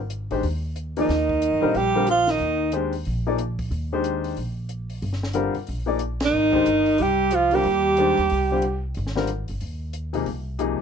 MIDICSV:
0, 0, Header, 1, 7, 480
1, 0, Start_track
1, 0, Key_signature, -3, "major"
1, 0, Tempo, 327690
1, 1600, Time_signature, 4, 2, 24, 8
1, 15843, End_track
2, 0, Start_track
2, 0, Title_t, "Alto saxophone"
2, 0, Program_c, 0, 65
2, 1470, Note_on_c, 0, 63, 74
2, 2588, Note_on_c, 0, 67, 82
2, 2610, Note_off_c, 0, 63, 0
2, 3054, Note_off_c, 0, 67, 0
2, 3089, Note_on_c, 0, 65, 79
2, 3381, Note_on_c, 0, 63, 72
2, 3403, Note_off_c, 0, 65, 0
2, 4022, Note_off_c, 0, 63, 0
2, 9160, Note_on_c, 0, 63, 84
2, 10292, Note_on_c, 0, 67, 81
2, 10314, Note_off_c, 0, 63, 0
2, 10770, Note_on_c, 0, 65, 79
2, 10792, Note_off_c, 0, 67, 0
2, 11068, Note_on_c, 0, 67, 91
2, 11090, Note_off_c, 0, 65, 0
2, 12965, Note_off_c, 0, 67, 0
2, 15843, End_track
3, 0, Start_track
3, 0, Title_t, "Grand piano"
3, 0, Program_c, 1, 0
3, 451, Note_on_c, 1, 51, 54
3, 463, Note_on_c, 1, 56, 51
3, 464, Note_on_c, 1, 62, 46
3, 467, Note_on_c, 1, 72, 65
3, 471, Note_on_c, 1, 67, 50
3, 618, Note_off_c, 1, 51, 0
3, 623, Note_off_c, 1, 56, 0
3, 624, Note_off_c, 1, 62, 0
3, 626, Note_off_c, 1, 72, 0
3, 628, Note_off_c, 1, 67, 0
3, 1420, Note_on_c, 1, 53, 57
3, 1420, Note_on_c, 1, 58, 50
3, 1429, Note_on_c, 1, 63, 52
3, 1435, Note_on_c, 1, 68, 52
3, 1435, Note_on_c, 1, 74, 55
3, 1582, Note_off_c, 1, 53, 0
3, 1582, Note_off_c, 1, 58, 0
3, 1587, Note_off_c, 1, 63, 0
3, 1590, Note_off_c, 1, 68, 0
3, 1590, Note_off_c, 1, 74, 0
3, 2362, Note_on_c, 1, 50, 58
3, 2373, Note_on_c, 1, 55, 62
3, 2373, Note_on_c, 1, 60, 61
3, 2379, Note_on_c, 1, 65, 56
3, 2382, Note_on_c, 1, 70, 72
3, 2533, Note_off_c, 1, 50, 0
3, 2539, Note_off_c, 1, 55, 0
3, 2539, Note_off_c, 1, 60, 0
3, 2542, Note_off_c, 1, 65, 0
3, 2543, Note_off_c, 1, 70, 0
3, 2851, Note_on_c, 1, 55, 53
3, 2854, Note_on_c, 1, 50, 58
3, 2860, Note_on_c, 1, 65, 51
3, 2863, Note_on_c, 1, 60, 49
3, 2873, Note_on_c, 1, 70, 67
3, 3018, Note_off_c, 1, 55, 0
3, 3019, Note_off_c, 1, 50, 0
3, 3023, Note_off_c, 1, 65, 0
3, 3024, Note_off_c, 1, 60, 0
3, 3029, Note_off_c, 1, 70, 0
3, 3995, Note_on_c, 1, 51, 57
3, 3998, Note_on_c, 1, 56, 55
3, 4004, Note_on_c, 1, 62, 49
3, 4009, Note_on_c, 1, 67, 54
3, 4011, Note_on_c, 1, 72, 63
3, 4267, Note_off_c, 1, 51, 0
3, 4269, Note_off_c, 1, 56, 0
3, 4272, Note_off_c, 1, 62, 0
3, 4274, Note_off_c, 1, 67, 0
3, 4275, Note_off_c, 1, 72, 0
3, 4786, Note_on_c, 1, 58, 54
3, 4787, Note_on_c, 1, 53, 56
3, 4793, Note_on_c, 1, 63, 52
3, 4793, Note_on_c, 1, 68, 49
3, 4801, Note_on_c, 1, 74, 60
3, 4946, Note_off_c, 1, 53, 0
3, 4946, Note_off_c, 1, 58, 0
3, 4950, Note_off_c, 1, 63, 0
3, 4950, Note_off_c, 1, 68, 0
3, 4954, Note_off_c, 1, 74, 0
3, 5751, Note_on_c, 1, 51, 67
3, 5753, Note_on_c, 1, 56, 56
3, 5754, Note_on_c, 1, 62, 51
3, 5763, Note_on_c, 1, 67, 57
3, 5766, Note_on_c, 1, 72, 67
3, 6371, Note_off_c, 1, 51, 0
3, 6372, Note_off_c, 1, 56, 0
3, 6373, Note_off_c, 1, 62, 0
3, 6377, Note_off_c, 1, 67, 0
3, 6379, Note_off_c, 1, 72, 0
3, 7821, Note_on_c, 1, 50, 62
3, 7832, Note_on_c, 1, 60, 54
3, 7833, Note_on_c, 1, 55, 55
3, 7835, Note_on_c, 1, 65, 58
3, 7835, Note_on_c, 1, 70, 65
3, 8102, Note_off_c, 1, 50, 0
3, 8107, Note_off_c, 1, 60, 0
3, 8108, Note_off_c, 1, 55, 0
3, 8109, Note_off_c, 1, 65, 0
3, 8109, Note_off_c, 1, 70, 0
3, 8587, Note_on_c, 1, 53, 49
3, 8593, Note_on_c, 1, 58, 53
3, 8597, Note_on_c, 1, 63, 50
3, 8600, Note_on_c, 1, 68, 49
3, 8609, Note_on_c, 1, 74, 64
3, 8768, Note_off_c, 1, 53, 0
3, 8771, Note_off_c, 1, 58, 0
3, 8773, Note_off_c, 1, 63, 0
3, 8774, Note_off_c, 1, 68, 0
3, 8779, Note_off_c, 1, 74, 0
3, 9554, Note_on_c, 1, 51, 65
3, 9557, Note_on_c, 1, 56, 59
3, 9563, Note_on_c, 1, 62, 55
3, 9566, Note_on_c, 1, 67, 57
3, 9570, Note_on_c, 1, 72, 77
3, 9732, Note_off_c, 1, 51, 0
3, 9733, Note_off_c, 1, 56, 0
3, 9736, Note_off_c, 1, 62, 0
3, 9738, Note_off_c, 1, 67, 0
3, 9740, Note_off_c, 1, 72, 0
3, 11019, Note_on_c, 1, 50, 57
3, 11030, Note_on_c, 1, 55, 51
3, 11030, Note_on_c, 1, 60, 51
3, 11031, Note_on_c, 1, 65, 59
3, 11041, Note_on_c, 1, 70, 61
3, 11184, Note_off_c, 1, 50, 0
3, 11190, Note_off_c, 1, 55, 0
3, 11190, Note_off_c, 1, 60, 0
3, 11190, Note_off_c, 1, 65, 0
3, 11195, Note_off_c, 1, 70, 0
3, 11687, Note_on_c, 1, 51, 63
3, 11693, Note_on_c, 1, 62, 60
3, 11696, Note_on_c, 1, 56, 50
3, 11699, Note_on_c, 1, 67, 54
3, 11703, Note_on_c, 1, 72, 62
3, 11955, Note_off_c, 1, 51, 0
3, 11958, Note_off_c, 1, 62, 0
3, 11959, Note_off_c, 1, 56, 0
3, 11961, Note_off_c, 1, 67, 0
3, 11963, Note_off_c, 1, 72, 0
3, 12468, Note_on_c, 1, 55, 47
3, 12469, Note_on_c, 1, 50, 51
3, 12478, Note_on_c, 1, 60, 47
3, 12478, Note_on_c, 1, 65, 47
3, 12480, Note_on_c, 1, 72, 53
3, 12629, Note_off_c, 1, 50, 0
3, 12629, Note_off_c, 1, 55, 0
3, 12633, Note_off_c, 1, 60, 0
3, 12633, Note_off_c, 1, 65, 0
3, 12635, Note_off_c, 1, 72, 0
3, 13409, Note_on_c, 1, 50, 58
3, 13415, Note_on_c, 1, 55, 52
3, 13419, Note_on_c, 1, 60, 54
3, 13432, Note_on_c, 1, 65, 51
3, 13438, Note_on_c, 1, 70, 63
3, 13579, Note_off_c, 1, 50, 0
3, 13582, Note_off_c, 1, 55, 0
3, 13584, Note_off_c, 1, 60, 0
3, 13590, Note_off_c, 1, 65, 0
3, 13593, Note_off_c, 1, 70, 0
3, 14840, Note_on_c, 1, 53, 47
3, 14841, Note_on_c, 1, 48, 52
3, 14851, Note_on_c, 1, 58, 48
3, 14854, Note_on_c, 1, 63, 50
3, 14860, Note_on_c, 1, 68, 59
3, 15013, Note_off_c, 1, 48, 0
3, 15013, Note_off_c, 1, 53, 0
3, 15018, Note_off_c, 1, 58, 0
3, 15020, Note_off_c, 1, 63, 0
3, 15023, Note_off_c, 1, 68, 0
3, 15507, Note_on_c, 1, 48, 60
3, 15516, Note_on_c, 1, 53, 53
3, 15524, Note_on_c, 1, 58, 53
3, 15524, Note_on_c, 1, 63, 53
3, 15531, Note_on_c, 1, 68, 64
3, 15782, Note_off_c, 1, 48, 0
3, 15787, Note_off_c, 1, 53, 0
3, 15791, Note_off_c, 1, 58, 0
3, 15791, Note_off_c, 1, 63, 0
3, 15794, Note_off_c, 1, 68, 0
3, 15843, End_track
4, 0, Start_track
4, 0, Title_t, "Tenor saxophone"
4, 0, Program_c, 2, 66
4, 1462, Note_on_c, 2, 51, 63
4, 2583, Note_on_c, 2, 55, 77
4, 2605, Note_off_c, 2, 51, 0
4, 3036, Note_off_c, 2, 55, 0
4, 3044, Note_on_c, 2, 53, 68
4, 3331, Note_on_c, 2, 51, 64
4, 3352, Note_off_c, 2, 53, 0
4, 3996, Note_off_c, 2, 51, 0
4, 9126, Note_on_c, 2, 51, 68
4, 10242, Note_on_c, 2, 55, 79
4, 10264, Note_off_c, 2, 51, 0
4, 10721, Note_on_c, 2, 53, 70
4, 10743, Note_off_c, 2, 55, 0
4, 11016, Note_on_c, 2, 55, 73
4, 11038, Note_off_c, 2, 53, 0
4, 12939, Note_off_c, 2, 55, 0
4, 15843, End_track
5, 0, Start_track
5, 0, Title_t, "Upright bass"
5, 0, Program_c, 3, 32
5, 0, Note_on_c, 3, 32, 78
5, 400, Note_off_c, 3, 32, 0
5, 459, Note_on_c, 3, 33, 55
5, 627, Note_off_c, 3, 33, 0
5, 638, Note_on_c, 3, 39, 69
5, 1551, Note_off_c, 3, 39, 0
5, 1600, Note_on_c, 3, 39, 73
5, 2196, Note_off_c, 3, 39, 0
5, 2237, Note_on_c, 3, 43, 59
5, 2387, Note_off_c, 3, 43, 0
5, 2395, Note_on_c, 3, 46, 59
5, 2546, Note_off_c, 3, 46, 0
5, 2561, Note_on_c, 3, 34, 72
5, 3473, Note_off_c, 3, 34, 0
5, 3519, Note_on_c, 3, 39, 71
5, 4432, Note_off_c, 3, 39, 0
5, 4494, Note_on_c, 3, 34, 75
5, 5400, Note_off_c, 3, 34, 0
5, 5431, Note_on_c, 3, 39, 74
5, 6349, Note_off_c, 3, 39, 0
5, 6403, Note_on_c, 3, 34, 63
5, 7315, Note_off_c, 3, 34, 0
5, 7358, Note_on_c, 3, 31, 72
5, 8086, Note_off_c, 3, 31, 0
5, 8328, Note_on_c, 3, 34, 76
5, 9239, Note_off_c, 3, 34, 0
5, 9270, Note_on_c, 3, 32, 71
5, 9723, Note_off_c, 3, 32, 0
5, 9757, Note_on_c, 3, 31, 59
5, 10207, Note_off_c, 3, 31, 0
5, 10242, Note_on_c, 3, 36, 69
5, 11156, Note_off_c, 3, 36, 0
5, 11214, Note_on_c, 3, 39, 79
5, 11934, Note_off_c, 3, 39, 0
5, 11991, Note_on_c, 3, 39, 58
5, 12156, Note_off_c, 3, 39, 0
5, 12180, Note_on_c, 3, 36, 73
5, 13084, Note_off_c, 3, 36, 0
5, 13140, Note_on_c, 3, 32, 80
5, 13856, Note_off_c, 3, 32, 0
5, 13908, Note_on_c, 3, 31, 56
5, 14073, Note_off_c, 3, 31, 0
5, 14087, Note_on_c, 3, 39, 64
5, 14996, Note_off_c, 3, 39, 0
5, 15038, Note_on_c, 3, 36, 77
5, 15763, Note_off_c, 3, 36, 0
5, 15843, End_track
6, 0, Start_track
6, 0, Title_t, "Muted upright bass strokes"
6, 8132, Note_on_c, 9, 29, 30
6, 8278, Note_off_c, 9, 29, 0
6, 15843, End_track
7, 0, Start_track
7, 0, Title_t, "Drums"
7, 146, Note_on_c, 9, 42, 47
7, 293, Note_off_c, 9, 42, 0
7, 449, Note_on_c, 9, 46, 30
7, 595, Note_off_c, 9, 46, 0
7, 633, Note_on_c, 9, 46, 38
7, 779, Note_off_c, 9, 46, 0
7, 1111, Note_on_c, 9, 42, 46
7, 1257, Note_off_c, 9, 42, 0
7, 1415, Note_on_c, 9, 46, 38
7, 1561, Note_off_c, 9, 46, 0
7, 1596, Note_on_c, 9, 46, 33
7, 1603, Note_on_c, 9, 38, 29
7, 1742, Note_off_c, 9, 46, 0
7, 1750, Note_off_c, 9, 38, 0
7, 1896, Note_on_c, 9, 36, 49
7, 2043, Note_off_c, 9, 36, 0
7, 2077, Note_on_c, 9, 42, 48
7, 2223, Note_off_c, 9, 42, 0
7, 2555, Note_on_c, 9, 46, 32
7, 2702, Note_off_c, 9, 46, 0
7, 3029, Note_on_c, 9, 42, 49
7, 3175, Note_off_c, 9, 42, 0
7, 3326, Note_on_c, 9, 46, 38
7, 3333, Note_on_c, 9, 38, 29
7, 3473, Note_off_c, 9, 46, 0
7, 3480, Note_off_c, 9, 38, 0
7, 3496, Note_on_c, 9, 46, 30
7, 3643, Note_off_c, 9, 46, 0
7, 3981, Note_on_c, 9, 42, 46
7, 4128, Note_off_c, 9, 42, 0
7, 4287, Note_on_c, 9, 46, 32
7, 4434, Note_off_c, 9, 46, 0
7, 4470, Note_on_c, 9, 46, 35
7, 4617, Note_off_c, 9, 46, 0
7, 4956, Note_on_c, 9, 42, 51
7, 5103, Note_off_c, 9, 42, 0
7, 5257, Note_on_c, 9, 46, 38
7, 5258, Note_on_c, 9, 36, 48
7, 5403, Note_off_c, 9, 46, 0
7, 5405, Note_off_c, 9, 36, 0
7, 5442, Note_on_c, 9, 46, 30
7, 5588, Note_off_c, 9, 46, 0
7, 5916, Note_on_c, 9, 42, 43
7, 6063, Note_off_c, 9, 42, 0
7, 6214, Note_on_c, 9, 46, 31
7, 6360, Note_off_c, 9, 46, 0
7, 6396, Note_on_c, 9, 46, 35
7, 6543, Note_off_c, 9, 46, 0
7, 6870, Note_on_c, 9, 42, 45
7, 7017, Note_off_c, 9, 42, 0
7, 7173, Note_on_c, 9, 46, 34
7, 7319, Note_off_c, 9, 46, 0
7, 7356, Note_on_c, 9, 46, 37
7, 7503, Note_off_c, 9, 46, 0
7, 7510, Note_on_c, 9, 38, 25
7, 7657, Note_off_c, 9, 38, 0
7, 7667, Note_on_c, 9, 38, 40
7, 7812, Note_on_c, 9, 42, 45
7, 7814, Note_off_c, 9, 38, 0
7, 7959, Note_off_c, 9, 42, 0
7, 8124, Note_on_c, 9, 46, 32
7, 8271, Note_off_c, 9, 46, 0
7, 8303, Note_on_c, 9, 46, 40
7, 8450, Note_off_c, 9, 46, 0
7, 8776, Note_on_c, 9, 42, 52
7, 8923, Note_off_c, 9, 42, 0
7, 9086, Note_on_c, 9, 51, 61
7, 9093, Note_on_c, 9, 38, 76
7, 9233, Note_off_c, 9, 51, 0
7, 9240, Note_off_c, 9, 38, 0
7, 9569, Note_on_c, 9, 36, 48
7, 9716, Note_off_c, 9, 36, 0
7, 9753, Note_on_c, 9, 42, 46
7, 9899, Note_off_c, 9, 42, 0
7, 10049, Note_on_c, 9, 46, 31
7, 10196, Note_off_c, 9, 46, 0
7, 10226, Note_on_c, 9, 46, 40
7, 10372, Note_off_c, 9, 46, 0
7, 10704, Note_on_c, 9, 42, 50
7, 10851, Note_off_c, 9, 42, 0
7, 11002, Note_on_c, 9, 46, 38
7, 11149, Note_off_c, 9, 46, 0
7, 11183, Note_on_c, 9, 46, 35
7, 11329, Note_off_c, 9, 46, 0
7, 11670, Note_on_c, 9, 42, 43
7, 11816, Note_off_c, 9, 42, 0
7, 11971, Note_on_c, 9, 46, 31
7, 12117, Note_off_c, 9, 46, 0
7, 12152, Note_on_c, 9, 46, 39
7, 12298, Note_off_c, 9, 46, 0
7, 12627, Note_on_c, 9, 42, 45
7, 12774, Note_off_c, 9, 42, 0
7, 13103, Note_on_c, 9, 46, 36
7, 13249, Note_off_c, 9, 46, 0
7, 13281, Note_on_c, 9, 38, 30
7, 13426, Note_off_c, 9, 38, 0
7, 13426, Note_on_c, 9, 38, 37
7, 13573, Note_off_c, 9, 38, 0
7, 13584, Note_on_c, 9, 42, 45
7, 13730, Note_off_c, 9, 42, 0
7, 13884, Note_on_c, 9, 46, 32
7, 14030, Note_off_c, 9, 46, 0
7, 14071, Note_on_c, 9, 46, 39
7, 14217, Note_off_c, 9, 46, 0
7, 14549, Note_on_c, 9, 42, 52
7, 14695, Note_off_c, 9, 42, 0
7, 14847, Note_on_c, 9, 46, 35
7, 14994, Note_off_c, 9, 46, 0
7, 15031, Note_on_c, 9, 46, 32
7, 15177, Note_off_c, 9, 46, 0
7, 15512, Note_on_c, 9, 42, 42
7, 15658, Note_off_c, 9, 42, 0
7, 15843, End_track
0, 0, End_of_file